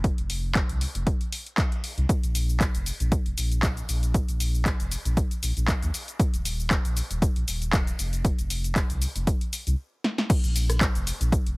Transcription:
0.00 0.11 F1 loud
0.04 kick loud
0.04 closed hi-hat medium
0.18 0.62 F1 loud
0.18 closed hi-hat soft
0.30 open hi-hat loud
0.55 kick loud
0.55 clap loud
0.55 closed hi-hat medium
0.69 0.86 C2 medium
0.69 closed hi-hat soft
0.81 open hi-hat medium
0.95 1.11 F1 loud
0.95 closed hi-hat soft
1.07 kick loud
1.07 closed hi-hat medium
1.21 closed hi-hat soft
1.32 open hi-hat loud
1.46 closed hi-hat soft
1.58 kick loud
1.58 clap loud
1.58 closed hi-hat medium
1.72 closed hi-hat soft
1.84 open hi-hat medium
1.97 2.05 C2 medium
1.97 closed hi-hat soft
2.09 kick loud
2.09 closed hi-hat medium
2.09 shaker soft
2.23 2.67 A#1 loud
2.23 closed hi-hat soft
2.23 shaker soft
2.35 open hi-hat loud
2.35 shaker medium
2.49 shaker soft
2.61 kick loud
2.61 clap loud
2.61 closed hi-hat medium
2.61 shaker soft
2.75 2.91 F1 medium
2.75 closed hi-hat soft
2.75 shaker soft
2.86 open hi-hat medium
2.86 shaker medium
3.00 3.16 A#1 loud
3.00 closed hi-hat soft
3.00 shaker soft
3.12 kick loud
3.12 closed hi-hat medium
3.12 shaker soft
3.26 3.33 F1 medium
3.26 closed hi-hat soft
3.37 3.82 A#1 medium
3.37 open hi-hat loud
3.37 shaker medium
3.51 closed hi-hat soft
3.51 shaker soft
3.63 kick loud
3.63 clap loud
3.63 closed hi-hat medium
3.63 shaker soft
3.77 closed hi-hat soft
3.77 shaker soft
3.89 4.21 A#1 loud
3.89 open hi-hat medium
3.89 shaker medium
4.03 closed hi-hat soft
4.03 shaker soft
4.14 kick loud
4.14 closed hi-hat medium
4.14 shaker soft
4.28 4.72 A#1 loud
4.28 closed hi-hat soft
4.28 shaker soft
4.40 open hi-hat loud
4.40 shaker medium
4.55 shaker soft
4.66 kick loud
4.66 clap loud
4.66 closed hi-hat medium
4.66 shaker soft
4.79 4.96 F1 medium
4.79 closed hi-hat soft
4.79 shaker soft
4.91 open hi-hat medium
4.91 shaker medium
5.05 5.21 A#1 loud
5.05 closed hi-hat medium
5.05 shaker soft
5.17 kick loud
5.17 closed hi-hat medium
5.17 shaker soft
5.31 closed hi-hat soft
5.31 shaker soft
5.43 5.52 A#1 loud
5.43 open hi-hat loud
5.43 shaker medium
5.57 5.73 A#1 loud
5.57 closed hi-hat soft
5.57 shaker soft
5.68 kick loud
5.68 clap loud
5.68 closed hi-hat medium
5.68 shaker soft
5.82 5.90 D#2 medium
5.82 closed hi-hat soft
5.82 shaker soft
5.94 open hi-hat medium
5.94 shaker medium
6.08 closed hi-hat soft
6.08 shaker soft
6.20 kick loud
6.20 closed hi-hat medium
6.20 shaker soft
6.34 6.77 D#1 loud
6.34 closed hi-hat soft
6.34 shaker soft
6.45 open hi-hat loud
6.45 shaker medium
6.60 shaker soft
6.71 kick loud
6.71 clap loud
6.71 closed hi-hat medium
6.71 shaker soft
6.85 7.01 A#1 medium
6.85 closed hi-hat medium
6.85 shaker soft
6.97 open hi-hat medium
6.97 shaker medium
7.11 7.27 D#1 loud
7.11 closed hi-hat medium
7.11 shaker soft
7.22 kick loud
7.22 closed hi-hat medium
7.22 shaker soft
7.36 7.44 A#1 medium
7.36 closed hi-hat soft
7.48 7.93 D#1 medium
7.48 open hi-hat loud
7.48 shaker medium
7.62 closed hi-hat soft
7.62 shaker soft
7.73 kick loud
7.73 clap loud
7.73 closed hi-hat medium
7.73 shaker soft
7.87 closed hi-hat soft
7.87 shaker soft
7.99 8.31 F1 loud
7.99 open hi-hat medium
7.99 shaker medium
8.13 closed hi-hat soft
8.13 shaker soft
8.25 kick loud
8.25 closed hi-hat medium
8.25 shaker soft
8.39 8.82 F1 loud
8.39 closed hi-hat soft
8.39 shaker soft
8.50 open hi-hat loud
8.50 shaker medium
8.64 closed hi-hat soft
8.64 shaker soft
8.76 kick loud
8.76 clap loud
8.76 closed hi-hat medium
8.76 shaker soft
8.90 9.06 C2 medium
8.90 closed hi-hat medium
8.90 shaker soft
9.02 open hi-hat medium
9.02 shaker medium
9.15 9.32 F1 loud
9.15 closed hi-hat medium
9.15 shaker soft
9.27 kick loud
9.27 closed hi-hat medium
9.27 shaker soft
9.41 closed hi-hat soft
9.53 open hi-hat loud
9.53 shaker medium
9.67 9.75 C2 medium
9.67 closed hi-hat soft
9.67 shaker soft
10.04 snare medium
10.18 snare medium
10.30 kick loud
10.30 closed hi-hat medium
10.30 crash loud
10.30 shaker soft
10.44 10.88 A#1 loud
10.44 closed hi-hat soft
10.44 shaker soft
10.56 open hi-hat loud
10.56 shaker medium
10.70 cross-stick medium
10.70 closed hi-hat medium
10.70 shaker soft
10.81 kick loud
10.81 clap loud
10.81 closed hi-hat medium
10.81 shaker soft
10.95 11.11 F1 medium
10.95 closed hi-hat soft
10.95 shaker soft
11.07 open hi-hat medium
11.07 shaker medium
11.21 11.37 A#1 loud
11.21 closed hi-hat medium
11.21 shaker soft
11.32 kick loud
11.32 closed hi-hat medium
11.32 shaker soft
11.46 11.54 F1 medium
11.46 closed hi-hat soft

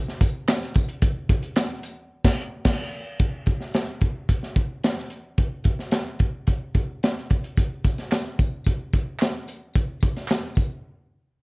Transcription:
0.08 snare soft
0.21 kick medium
0.21 closed hi-hat medium
0.21 tambourine medium
0.48 snare loud
0.48 clap medium
0.48 closed hi-hat medium
0.48 tambourine medium
0.62 snare soft
0.74 kick medium
0.74 closed hi-hat medium
0.74 tambourine medium
0.89 closed hi-hat medium
1.02 kick loud
1.02 closed hi-hat loud
1.02 tambourine soft
1.29 kick medium
1.29 closed hi-hat medium
1.43 closed hi-hat medium
1.56 snare loud
1.56 clap medium
1.56 closed hi-hat medium
1.56 tambourine medium
1.83 closed hi-hat medium
1.83 tambourine medium
2.24 kick loud
2.24 snare loud
2.24 crash medium
2.65 kick loud
2.65 snare loud
2.65 crash medium
3.20 kick medium
3.20 closed hi-hat medium
3.46 kick medium
3.46 closed hi-hat medium
3.61 snare soft
3.74 snare loud
3.74 closed hi-hat medium
4.01 kick medium
4.01 closed hi-hat medium
4.29 kick medium
4.29 closed hi-hat medium
4.43 snare soft
4.56 kick medium
4.56 closed hi-hat medium
4.84 snare loud
4.84 closed hi-hat medium
4.98 snare soft
5.10 closed hi-hat medium
5.38 kick medium
5.38 closed hi-hat medium
5.64 kick medium
5.64 closed hi-hat medium
5.79 snare soft
5.91 snare loud
5.91 closed hi-hat medium
6.19 kick medium
6.19 closed hi-hat medium
6.47 kick medium
6.47 closed hi-hat medium
6.75 kick medium
6.75 closed hi-hat medium
7.03 snare loud
7.03 closed hi-hat medium
7.30 kick medium
7.30 closed hi-hat medium
7.44 closed hi-hat medium
7.57 kick medium
7.57 closed hi-hat medium
7.57 tambourine soft
7.84 kick medium
7.84 closed hi-hat medium
7.84 tambourine soft
7.98 snare soft
7.98 closed hi-hat soft
8.11 snare loud
8.11 clap medium
8.11 closed hi-hat medium
8.11 tambourine medium
8.39 kick medium
8.39 closed hi-hat medium
8.39 tambourine soft
8.64 kick medium
8.64 closed hi-hat medium
8.64 tambourine soft
8.93 kick medium
8.93 closed hi-hat medium
8.93 tambourine medium
9.19 snare loud
9.19 clap medium
9.19 closed hi-hat medium
9.19 tambourine medium
9.48 closed hi-hat medium
9.48 tambourine soft
9.74 kick medium
9.74 closed hi-hat medium
9.74 tambourine soft
10.00 kick medium
10.00 closed hi-hat medium
10.00 tambourine soft
10.16 snare soft
10.16 closed hi-hat soft
10.28 snare loud
10.28 clap medium
10.28 closed hi-hat medium
10.28 tambourine medium
10.55 kick medium
10.55 closed hi-hat medium
10.55 tambourine soft

